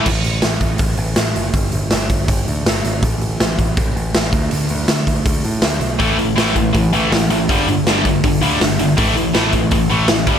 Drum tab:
CC |x-------|--------|--------|--------|
HH |-ooooooo|oooooooo|oooooooo|oooooooo|
SD |--o---o-|--o---o-|--o---o-|--o---o-|
BD |o--oo---|o--oo---|o--oo--o|---oo---|

CC |--------|--------|--------|
HH |oooooooo|oooooooo|oooooooo|
SD |--o---o-|--o---o-|--o---o-|
BD |o--oo---|o--oo---|o--oo--o|